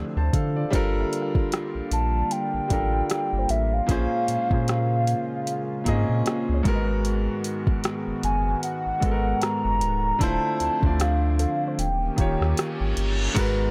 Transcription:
Already playing: analog synth pad C3 F3 A3 D4, grand piano D3 D4 E4 F4 B4 C5
0.17 sub bass D2, grand piano C5 A5
0.33 sub bass D3, grand piano A4 F5, kick, closed hi-hat
0.56 grand piano F4 D5
0.70 sub bass G1, analog synth pad D3 G3 A#3 F4, grand piano G3 D4 F4 A4, synth pluck C5, kick, closed hi-hat
0.75 grand piano A#4
1.01 synth pluck E5
1.13 closed hi-hat
1.22 synth pluck F5
1.35 kick
1.52 cross-stick, closed hi-hat
1.75 sub bass A#1
1.91 sub bass A#1, soft synth lead A5, closed hi-hat
2.31 soft synth lead G5, closed hi-hat
2.54 sub bass A1
2.68 sub bass A1, grand piano G3 D4 F4 A4, kick, closed hi-hat
2.73 grand piano A#4
3.10 synth pluck G4, cross-stick, closed hi-hat
3.33 sub bass G1
3.39 synth pluck C5
3.49 sub bass A1, soft synth lead E5, closed hi-hat
3.73 soft synth lead F5
3.86 sub bass A#1, grand piano A#2 A#3 C#4 G#4, analog synth pad C#3 G#3 F4, kick, closed hi-hat
3.91 grand piano C5
4.28 sub bass A#2, closed hi-hat
4.49 grand piano A#2 A#3 C#4 G#4, sub bass A#2, kick
4.54 grand piano C5
4.68 cross-stick, closed hi-hat
5.07 closed hi-hat
5.47 closed hi-hat
5.84 sub bass G#2, grand piano A#2 A#3 C4 G#4, kick, closed hi-hat
5.89 grand piano D#5
5.93 grand piano C#4
6.09 sub bass A#2
6.26 synth pluck G#4, cross-stick, closed hi-hat
6.49 sub bass C#2
6.54 synth pluck C#5
6.63 sub bass G#1, grand piano G#2 G#3 B3 F#4, analog synth pad D#3 B3 F#4, kick, closed hi-hat
6.68 grand piano A#4
6.75 synth pluck D#5
7.05 closed hi-hat
7.44 closed hi-hat
7.67 kick
7.84 cross-stick, closed hi-hat
8.07 sub bass F#1
8.23 sub bass F#1, soft synth lead G#5, closed hi-hat
8.63 soft synth lead F#5, closed hi-hat
8.86 sub bass G#1
9.00 sub bass G#1, grand piano G#2 G#3 B3 F#4, kick, closed hi-hat
9.05 grand piano A4
9.11 grand piano A#4
9.42 soft synth lead A#5, cross-stick, closed hi-hat
9.65 sub bass F#1
9.81 sub bass C#1, closed hi-hat
10.19 sub bass D1, grand piano D3 A3 E4 F4, analog synth pad D3 F3 A3 C4, soft synth lead A5, kick, closed hi-hat
10.23 grand piano C5
10.60 sub bass D2, closed hi-hat
10.81 sub bass D2, grand piano D3 A3 D4 F4, kick
10.86 grand piano D5
11.00 soft synth lead F5, cross-stick, closed hi-hat
11.39 synth pluck A4, closed hi-hat
11.68 synth pluck C5
11.78 sub bass D#1, analog synth pad D#3 A#3 C#4 G4, soft synth lead G5, closed hi-hat, reverse cymbal
12.16 sub bass D#1, grand piano D#3 A#3 F4 G4, kick, closed hi-hat
12.21 grand piano C#5
12.41 sub bass D#2, cross-stick
12.57 cross-stick, closed hi-hat
12.81 sub bass G#1
12.97 sub bass G1, closed hi-hat
13.34 sub bass G#1, grand piano G#2 G#3 F#4 A#4, analog synth pad D#3 G#3 B3 F#4, kick, closed hi-hat, crash
13.39 grand piano B4

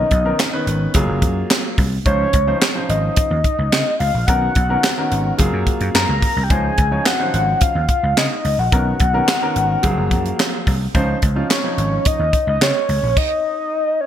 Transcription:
Already playing: soft synth lead D#5
0.11 slap bass B1, kick, closed hi-hat
0.25 grand piano D#3 B3 C#4 A#4
0.39 snare, clap, closed hi-hat
0.53 grand piano D#3 B3 C#4 B4
0.67 slap bass G#1, closed hi-hat
0.94 slap bass F#1, grand piano F#3 A#3 F4 G#4, kick, closed hi-hat
1.08 slap bass F#1
1.22 slap bass F#2, kick, closed hi-hat
1.50 snare, clap, closed hi-hat
1.78 slap bass C2, kick, open hi-hat
2.06 slap bass C#2, grand piano F3 C#4 D#4 C5, soft synth lead C#5, kick, closed hi-hat
2.33 slap bass C#2, kick, closed hi-hat
2.47 grand piano F3 C#4 D#4 C5
2.61 snare, clap, closed hi-hat
2.75 grand piano F3 C#4 D#4 C5
2.89 slap bass G#1, soft synth lead D#5, closed hi-hat
3.17 kick, closed hi-hat
3.31 slap bass D#2
3.44 kick, closed hi-hat
3.59 slap bass C#2
3.72 slap bass C#3, snare, clap, closed hi-hat
4.00 slap bass C#2, soft synth lead F5, open hi-hat
4.14 slap bass A#1
4.27 slap bass B1, grand piano D#3 B3 C#4 A#4, soft synth lead F#5, kick, closed hi-hat
4.55 slap bass B1, kick, closed hi-hat
4.69 grand piano D#3 B3 C#4 A#4
4.84 snare, clap, closed hi-hat
4.97 grand piano D#3 B3 C#4 A#4
5.11 slap bass G#1, closed hi-hat
5.38 slap bass F#1, grand piano F#3 A#3 F4 G#4, kick, closed hi-hat
5.53 slap bass F#2
5.67 kick, closed hi-hat
5.81 slap bass F#2, closed hi-hat
5.95 slap bass F#2, soft synth lead A#5, snare, clap, closed hi-hat
6.09 slap bass C#2
6.22 kick, open hi-hat
6.36 slap bass C2
6.43 soft synth lead G5
6.50 slap bass C#2, grand piano F3 C#4 D#4 C5, soft synth lead G#5, kick, closed hi-hat
6.78 slap bass C#2, kick, closed hi-hat
6.91 grand piano F3 C#4 D#4 C#5
7.06 soft synth lead F#5, snare, clap, closed hi-hat
7.19 grand piano D#3 C#4 D#4 C5
7.25 grand piano F3
7.34 slap bass G#1, closed hi-hat
7.61 soft synth lead F5, kick, closed hi-hat
7.75 slap bass D#2
7.89 kick, closed hi-hat
8.03 slap bass C#2
8.17 slap bass C#3, soft synth lead D#5, snare, clap, closed hi-hat
8.45 slap bass C#2, open hi-hat
8.58 slap bass A#1, soft synth lead F#5
8.72 slap bass B1, grand piano D#3 B3 C#4 A#4, kick, closed hi-hat
9.00 slap bass B1, kick, closed hi-hat
9.14 grand piano D#3 B3 C#4 A#4
9.28 snare, clap, closed hi-hat
9.42 grand piano D#3 B3 C#4 A#4
9.56 slap bass G#1, closed hi-hat
9.83 slap bass F#1, grand piano F3 F#3 A#3 G#4, kick, closed hi-hat
9.97 slap bass F#1
10.11 slap bass F#2, kick, closed hi-hat
10.26 closed hi-hat
10.39 snare, clap, closed hi-hat
10.67 slap bass C2, kick, open hi-hat
10.94 slap bass C#2, grand piano F3 C#4 D#4 C5, kick, closed hi-hat
11.22 slap bass C#2, kick, closed hi-hat
11.35 grand piano F3 C#4 D#4 F4
11.50 soft synth lead C#5, snare, clap, closed hi-hat
11.64 grand piano F3 C#4 D#4 C#5
11.78 slap bass G#1, closed hi-hat
12.05 soft synth lead D#5, kick, closed hi-hat
12.19 slap bass D#2
12.33 kick, closed hi-hat
12.47 slap bass C#2, soft synth lead D#5
12.61 slap bass C#3, soft synth lead C#5, snare, clap, closed hi-hat
12.89 slap bass C#2, open hi-hat
13.03 slap bass A#1
13.17 soft synth lead D#5, kick, crash
14.01 soft synth lead C#5

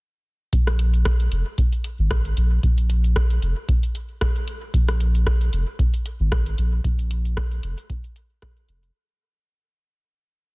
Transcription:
0.53 sub bass A#1, kick, closed hi-hat
0.67 cross-stick, closed hi-hat
0.79 closed hi-hat
0.94 closed hi-hat
1.05 kick, cross-stick, closed hi-hat
1.20 closed hi-hat
1.32 sub bass F1, closed hi-hat
1.58 kick, closed hi-hat
1.73 closed hi-hat
1.84 closed hi-hat
1.99 sub bass G#1
2.11 kick, cross-stick, closed hi-hat
2.25 closed hi-hat
2.37 sub bass A#1, closed hi-hat
2.63 sub bass A#1, kick, closed hi-hat
2.78 closed hi-hat
2.90 closed hi-hat
3.04 closed hi-hat
3.16 kick, cross-stick, closed hi-hat
3.30 closed hi-hat
3.42 sub bass F1, closed hi-hat
3.69 kick, closed hi-hat
3.83 closed hi-hat
3.95 closed hi-hat
4.21 kick, cross-stick, closed hi-hat
4.36 closed hi-hat
4.48 closed hi-hat
4.74 sub bass A#1, kick, closed hi-hat
4.88 cross-stick, closed hi-hat
5.00 closed hi-hat
5.15 closed hi-hat
5.27 kick, cross-stick, closed hi-hat
5.41 closed hi-hat
5.53 sub bass F1, closed hi-hat
5.79 kick, closed hi-hat
5.94 closed hi-hat
6.06 closed hi-hat
6.20 sub bass G#1
6.32 kick, cross-stick, closed hi-hat
6.46 closed hi-hat
6.58 sub bass A#1, closed hi-hat
6.84 sub bass A#1, kick, closed hi-hat
6.99 closed hi-hat
7.11 closed hi-hat
7.25 closed hi-hat
7.37 kick, cross-stick, closed hi-hat
7.51 closed hi-hat
7.63 sub bass F1, closed hi-hat
7.78 closed hi-hat
7.90 kick, closed hi-hat
8.04 closed hi-hat
8.16 closed hi-hat
8.42 kick, cross-stick, closed hi-hat
8.57 closed hi-hat
8.69 sub bass F1, closed hi-hat
8.83 closed hi-hat

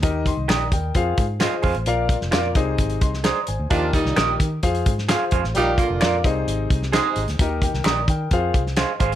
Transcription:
0.02 fingered electric bass D#2, grand piano D#3 D#4 G4 A#4 D#5, kick, closed hi-hat
0.26 grand piano D#5 C6, kick, closed hi-hat
0.37 fingered electric bass C2
0.48 fingered electric bass A#1, clean electric guitar G4 A#4 D#5, grand piano D5 A#5, finger snap, snare, closed hi-hat
0.72 fingered electric bass D#2, grand piano A#4 G5, kick, closed hi-hat
0.95 fingered electric bass F2, grand piano F4 G#4 C5 F5, kick, closed hi-hat
1.18 fingered electric bass G#2, kick, closed hi-hat
1.40 grand piano F4 G#4 C5 D#5, clean electric guitar G#4 C5 F5, finger snap, snare, closed hi-hat
1.62 fingered electric bass F2, clean electric guitar G#4 C5 F5, kick, open hi-hat
1.75 fingered electric bass A1, closed hi-hat
1.86 fingered electric bass A#1, grand piano A#2 F4 A#4 D5 F5, closed hi-hat
2.09 kick, closed hi-hat
2.21 fingered electric bass F1, snare
2.31 fingered electric bass F2, clean electric guitar F4 A#4 D5, grand piano F4 A#4 D5 F5, finger snap, snare, closed hi-hat
2.55 fingered electric bass C2, grand piano C3 D#4 G#4 C5 D#5, kick, closed hi-hat
2.78 fingered electric bass G#1, kick, closed hi-hat
2.90 closed hi-hat
3.01 fingered electric bass C2, grand piano D#5 C6, kick, closed hi-hat
3.14 snare
3.24 clean electric guitar G#4 C5 D#5, grand piano D5 A#5, finger snap, snare, closed hi-hat
3.47 fingered electric bass G#1, grand piano C5 G#5, closed hi-hat
3.60 fingered electric bass D2
3.70 fingered electric bass D#2, grand piano D#3 D#4 G4 A#4 D#5, horn section F3 D4 F4, kick, closed hi-hat
3.93 horn section A#2 G3 D#4, kick, closed hi-hat
4.05 fingered electric bass C2, snare
4.16 fingered electric bass A#1, grand piano D#4 G4 A#4 D#5, clean electric guitar G4 A#4 D#5, finger snap, snare, closed hi-hat
4.40 fingered electric bass D#3, kick, closed hi-hat
4.63 fingered electric bass F2, grand piano F4 G#4 C5 F5, kick, closed hi-hat
4.75 closed hi-hat
4.86 fingered electric bass G#2, kick, closed hi-hat
4.98 snare
5.08 grand piano F4 G#4 C5 F5, clean electric guitar G#4 C5 F5, finger snap, snare, closed hi-hat
5.31 fingered electric bass F2, clean electric guitar G#4 C5 F5, kick, closed hi-hat
5.44 fingered electric bass A1, snare
5.55 fingered electric bass A#1, grand piano A#2 F4 A#4 D5 F5, horn section G3 D#4 G4, closed hi-hat
5.78 horn section D3 A#3 F4, kick, closed hi-hat
5.90 fingered electric bass F1
6.01 fingered electric bass F2, clean electric guitar F4 A#4 D5, grand piano F4 A#4 D5 F5, finger snap, snare, closed hi-hat
6.24 fingered electric bass C2, grand piano C3 D#4 G#4 C5 D#5, kick, closed hi-hat
6.47 fingered electric bass G#1, closed hi-hat
6.70 fingered electric bass C2, kick, closed hi-hat
6.83 snare
6.92 horn section C3 G#3 D#4, grand piano D#4 G#4 C5 D#5, clean electric guitar G#4 C5 D#5, finger snap, snare, closed hi-hat
7.16 fingered electric bass G#1, closed hi-hat
7.28 fingered electric bass D2, snare, closed hi-hat
7.39 fingered electric bass D#2, grand piano D#3 D#4 G4 A#4 D#5, kick, closed hi-hat
7.62 grand piano A#4 G5, kick, closed hi-hat
7.74 fingered electric bass C2, snare
7.84 fingered electric bass A#1, clean electric guitar G4 A#4 D#5, grand piano D5 A#5, finger snap, snare, closed hi-hat
8.08 fingered electric bass D#3, grand piano A#4 G5, kick, closed hi-hat
8.31 fingered electric bass F2, grand piano F4 G#4 C5 F5, kick, closed hi-hat
8.54 fingered electric bass C2, kick, closed hi-hat
8.67 snare
8.77 clean electric guitar G#4 C5 F5, grand piano D#5 C6, finger snap, snare, closed hi-hat
9.00 fingered electric bass G#1, clean electric guitar G#4 C5 F5, grand piano C5 G#5, kick, closed hi-hat
9.12 fingered electric bass A1

